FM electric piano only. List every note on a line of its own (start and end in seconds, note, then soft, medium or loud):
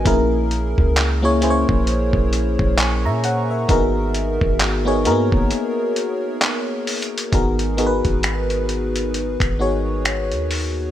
0.05 1.08 A#3 medium
0.05 1.08 C#4 medium
0.05 1.08 E4 medium
0.05 1.09 G#4 medium
0.05 1.09 A#4 loud
1.22 1.39 A#3 medium
1.22 1.40 C#4 medium
1.22 1.40 E4 medium
1.22 1.40 G#4 medium
1.22 1.41 C#5 loud
1.41 3.06 A#3 medium
1.41 3.07 C#4 medium
1.41 3.07 E4 medium
1.41 3.07 G#4 medium
1.41 1.50 C5 medium
1.50 2.82 C#5 loud
2.79 3.04 G#5 medium
2.79 3.04 C#6 medium
3.05 3.23 E5 medium
3.05 3.23 A#5 medium
3.25 3.49 C#5 medium
3.25 3.49 F#5 medium
3.50 3.70 A#4 medium
3.50 3.93 E5 medium
3.68 4.71 B3 medium
3.68 4.72 D#4 medium
3.68 4.72 F#4 medium
3.68 4.72 G#4 medium
3.68 4.73 A#4 loud
4.85 5.03 B3 medium
4.85 5.03 D#4 medium
4.85 5.03 F#4 medium
4.85 5.04 G#4 medium
4.85 5.04 C#5 medium
5.04 5.12 A#3 medium
5.04 6.70 D#4 medium
5.04 6.71 F#4 medium
5.04 6.71 G#4 medium
5.04 6.71 A#4 loud
5.11 6.73 B3 medium
7.32 7.74 B3 medium
7.32 7.74 D#4 medium
7.32 7.74 F#4 medium
7.32 7.75 G#4 medium
7.32 7.75 A#4 medium
7.77 9.43 B3 medium
7.77 9.43 D#4 medium
7.77 9.43 F#4 medium
7.77 9.44 G#4 medium
7.77 7.87 A#4 medium
7.87 9.47 B4 loud
9.59 10.83 B3 medium
9.59 10.83 D#4 medium
9.59 10.84 F#4 medium
9.59 10.84 G#4 medium
9.59 10.84 C#5 medium